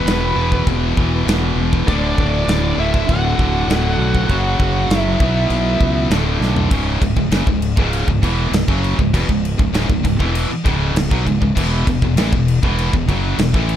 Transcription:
Already playing: E2 B2 E3 B3 B4
0.05 E1, snare, china
0.35 E1 E2 B2 E3
0.52 kick
0.67 E1, kick, china
0.97 E1 E2 B2 E3, kick
1.26 E1 E2 B2 E3, snare, china
1.56 E1
1.73 kick
1.87 D1 D2 A2 D3 D4 D5, kick, china
2.18 D1, kick
2.48 D1, snare, china
2.78 D1 D2 A2 D3 E4 E5
2.94 kick
3.08 D1 F#4 F#5, kick, china
3.38 D1 D2 A2 D3, kick
3.68 D1 D2 A2 D3, snare, china
3.98 B1
4.15 kick
4.29 F#1 F#2 C#3 F#3, kick, china
4.59 F#1, kick
4.89 F#1, snare, china
4.97 E4 E5
5.20 B1 B2 F#3 B3, kick
5.50 B1, china
5.80 C#2, kick
6.10 D1 D2 A2 D3, snare, china
6.40 B1, snare
6.57 floor tom
6.71 C#1 C#2 G#2 C#3, kick, crash
7.01 C#1 C#2 G#2, kick, crash
7.16 C#1 C#2 G#2, kick
7.31 F#1 F#2 C#3, snare, crash
7.47 C#1 C#2 G#2, kick
7.62 crash
7.77 C#1 C#2 G#2 C#3, kick
7.93 crash
8.07 C#1 C#2 G#2, kick
8.23 E1 E2 B2 E3, kick, crash
8.52 C#1 C#2 G#2, snare, crash
8.68 F#1 F#2 C#3 F#3, kick
8.84 crash
8.99 C#1 C#2 G#2, kick
9.14 E1 E2 B2, kick, crash
9.28 C#1 C#2 G#2, kick
9.45 crash
9.58 C#1 C#2 G#2, kick
9.73 C#1 C#2 G#2, snare, crash
9.88 C#1 C#2 G#2, kick
10.03 C#1 C#2 G#2, kick, crash
10.19 E1 E2 B2 E3, kick
10.35 crash
10.49 muted distorted electric guitar stroke, muted fingered electric bass stroke
10.64 C#1 C#2 G#2 C#3, kick, crash
10.95 C#1 C#2 G#2, snare, crash
11.10 B1 B2 F#3, kick
11.26 C#1 C#2 G#2, kick, crash
11.41 C#1 C#2 G#2, kick
11.55 E1 E2 B2 E3, kick, crash
11.86 E1 E2 B2, kick, crash
12.02 E1 E2 B2, kick
12.16 A1 A2 E3, snare, crash
12.32 E1 E2 B2, kick
12.48 crash
12.62 E1 E2 B2 E3, kick
12.78 crash
12.93 E1 E2 B2, kick
13.08 F#1 F#2 C#3 F#3, kick, crash
13.38 E1 E2 B2, snare, crash
13.54 A1 A2 E3 A3, kick
13.69 crash

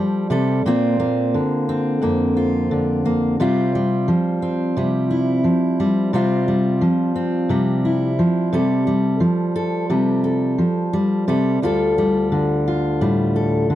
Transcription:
Already playing: F3 G3 A4
0.30 C3 G3 A4
0.66 A#2 A#3 C4 F4
1.00 A#3
1.34 D3
1.69 C4
2.02 F2 A#3
2.37 F4
2.71 D3
3.05 A#3
3.40 C3 G3 C4 F4
3.75 G3
4.08 F3
4.42 C4
4.77 C3 G3
5.11 E4
5.44 F3
5.80 G3
6.13 C3 G3 C4 F4
6.48 G3
6.81 F3
7.15 C4
7.49 C3 G3
7.85 E4
8.19 F3
8.53 C3 G3 A4
8.87 G3
9.20 F3
9.56 A4
9.90 C3 G3
10.24 A4
10.58 F3
10.93 G3
11.28 C3 G3 A4
11.62 D2 G3 F4 A4
11.98 G3
12.32 D3
12.67 F4
13.01 A2 G3
13.36 A4
13.70 D3

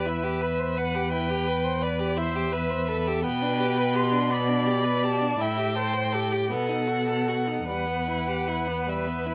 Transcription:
Already playing: E2 B4
0.06 E4 E5
0.23 G4
0.42 B4
0.59 C5
0.77 B4 F#5
0.95 G4
1.12 E4 G5
1.29 G4
1.47 B4
1.64 C5
1.82 B4 D5
1.99 G4
2.17 E4 C5 E5
2.36 G4
2.52 B4
2.70 C5
2.88 A4 B4
3.07 G4
3.23 B2 B3 B4 G5
3.42 D4
3.59 G4
3.78 B4
3.94 G4 C6
4.12 D4
4.30 B3 D5 B5
4.49 D4
4.66 G4
4.84 B4
5.03 G4 A5
5.21 D4
5.38 A2 E4 E5 G5
5.58 G4
5.76 A4 C5
5.94 C5
6.13 G4 A4
6.32 G4
6.50 B2 B3 A4 F#5
6.69 D#4
6.88 F#4
7.08 A4
7.28 F#4
7.47 D#4
7.68 E2 G3 B4 F#5
7.86 B3
8.08 E4
8.28 G4
8.48 E4
8.68 B3
8.87 G3 E5
9.07 B3
9.26 E4

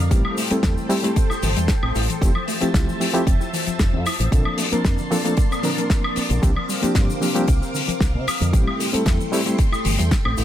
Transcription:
0.10 A1 E3 G3 A3 C4 E4 G4 A4 C5 G5, kick, closed hi-hat, shaker
0.25 G3, high woodblock
0.37 A3, open hi-hat, shaker
0.51 G3 A3 C4 E4 A4, muted fingered electric bass stroke, closed hi-hat, shaker
0.63 E2 E4, kick, snare, closed hi-hat, shaker
0.78 E3, shaker
0.89 G3 A3 C4 E4 G4, open hi-hat, shaker
1.03 G3 A3 C4 E4 G4, closed hi-hat, shaker
1.16 C4, kick, closed hi-hat, shaker
1.30 E4, muted fingered electric bass stroke, high woodblock, shaker
1.42 G1 E3, open hi-hat, shaker
1.56 E2 G3, closed hi-hat, shaker
1.68 A3, kick, snare, closed hi-hat, shaker
1.82 A1 C4, high woodblock
1.95 A1 E4, open hi-hat, shaker
2.09 E3, closed hi-hat, shaker
2.21 F1 E3 F3 A3 C4 E4 G4 E5 A5, kick, closed hi-hat, shaker
2.35 F3, high woodblock
2.48 A3, open hi-hat, shaker
2.60 F3 A3 C4 E4 G4, muted fingered electric bass stroke, closed hi-hat, shaker
2.74 C2 E4, kick, snare, closed hi-hat, shaker
2.88 E3, shaker
3.00 F3 A3 C4 E4 G4, open hi-hat, shaker
3.13 F3 A3 C4 E4 G4, closed hi-hat, shaker
3.27 F1 C4, kick, closed hi-hat, shaker
3.41 E4, shaker
3.53 E3, open hi-hat, shaker
3.66 F3, muted fingered electric bass stroke, closed hi-hat, shaker
3.79 F1 A3, kick, snare, closed hi-hat, shaker
3.93 F2 C4
4.06 E4, muted fingered electric bass stroke, open hi-hat, high woodblock, shaker
4.19 A1 E3, closed hi-hat, shaker
4.31 A#1 D3 F3 A#3 C4 D4 A4 D5 A5 C6, kick, closed hi-hat, shaker
4.45 F3, high woodblock
4.58 A3, open hi-hat, shaker
4.71 F3 A#3 C4 D4 A#4, muted fingered electric bass stroke, closed hi-hat, shaker
4.85 F2 C4, kick, snare, closed hi-hat, shaker
4.98 D3, shaker
5.10 F3 A#3 C4 D4 A4, open hi-hat, shaker
5.24 F3 A3 A#3 C4 D4 A4, closed hi-hat, shaker
5.37 A#3, kick, closed hi-hat, shaker
5.51 C4, high woodblock, shaker
5.63 D3 F3 A#3 C4 D4 A#4, open hi-hat, shaker
5.77 F3, closed hi-hat, shaker
5.90 A3, kick, snare, closed hi-hat, shaker
6.03 A#3, high woodblock
6.16 C4, muted fingered electric bass stroke, open hi-hat, shaker
6.30 A#1 D3, closed hi-hat, shaker
6.42 C2 D3 F3 A#3 C4 D4 G4 A#4 F5 D6, kick, closed hi-hat, shaker
6.56 F3, high woodblock
6.69 G3, open hi-hat, shaker
6.82 F3 A#3 C4 D4 G4, muted fingered electric bass stroke, closed hi-hat, shaker
6.95 G2 C4, kick, snare, closed hi-hat, shaker
7.09 D3, shaker
7.20 F3 A#3 C4 D4 G4, open hi-hat, shaker
7.34 F3 G3 A#3 C4 D4 G4, closed hi-hat, shaker
7.48 C2 A#3, kick, closed hi-hat, shaker
7.61 C4, shaker
7.74 D3, open hi-hat, shaker
7.87 F3, muted fingered electric bass stroke, closed hi-hat, shaker
8.00 C2 G3, kick, snare, closed hi-hat, shaker
8.14 C3 A#3
8.26 C4, muted fingered electric bass stroke, open hi-hat, high woodblock, shaker
8.40 F2 D3, closed hi-hat, shaker
8.53 A1 E3 G3 A3 C4 E4 G4 A4 G5 C6, kick, closed hi-hat, shaker
8.66 G3, high woodblock
8.79 A3, open hi-hat, shaker
8.93 G3 A3 C4 E4 A4, muted fingered electric bass stroke, closed hi-hat, shaker
9.06 E2 E4, kick, snare, closed hi-hat, shaker
9.19 E3, shaker
9.32 G3 A3 C4 E4 G4, open hi-hat, shaker
9.46 G3 A3 C4 E4 G4, closed hi-hat, shaker
9.58 C4, kick, closed hi-hat, shaker
9.72 E4, muted fingered electric bass stroke, high woodblock, shaker
9.85 G1 E3, open hi-hat, shaker
9.98 E2 G3, closed hi-hat, shaker
10.11 A3, kick, snare, closed hi-hat, shaker
10.25 A1 C4, high woodblock
10.37 A1 E4, open hi-hat, shaker

